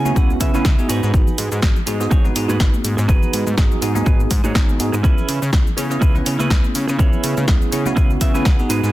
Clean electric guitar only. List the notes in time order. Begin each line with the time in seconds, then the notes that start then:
Already playing: G#5
0.15 C#4 E4 G#4 B4 F#5
0.40 E5, muted clean electric guitar stroke
0.53 C#4 E4 G#4 B4
0.65 E5
0.88 D#4 F#4 G#4 B4 C#5
1.86 muted clean electric guitar stroke
2.11 D#4 F#4 G#4 C#5
2.35 muted clean electric guitar stroke
2.48 D#4 F#4 G#4 B4
2.97 muted clean electric guitar stroke
3.08 D#4 F#4 G#4 B4
3.81 muted clean electric guitar stroke
4.06 D#4 F#4 G#4 B4
4.30 muted clean electric guitar stroke
4.44 D#4 F#4 G#4 C#5
4.92 muted clean electric guitar stroke
5.03 C#4 E4 G#4 B4
5.77 muted clean electric guitar stroke
6.01 C#4 E4 G#4 B4
6.25 muted clean electric guitar stroke
6.39 C#4 E4 G#4 B4
6.88 muted clean electric guitar stroke
6.98 C#4 E4 G#4 C#5
7.72 muted clean electric guitar stroke
7.96 C#4 E4 G#4 B4
8.20 E5, muted clean electric guitar stroke
8.34 C#4 E4 G#4 B4
8.46 F#5
8.69 D#4 F#4 G#4 B4